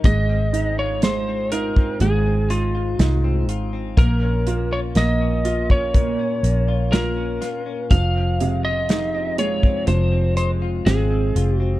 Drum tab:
HH |x-x-x-x-x-x-x-x-|x-x-x-x-x-x-x-x-|x-x-x-x-x-x-x-x-|
SD |----o-------o---|----o-------o-o-|----o-------o---|
BD |o------o--------|o------oo-------|o------o--------|